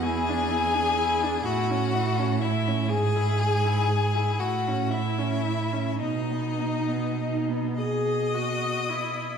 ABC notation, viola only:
X:1
M:6/8
L:1/16
Q:3/8=39
K:E
V:1 name="Viola"
E =D E D E D E C E C E C | G E G E G E E C E C E C | D B, D B, D B, G2 F2 E2 |]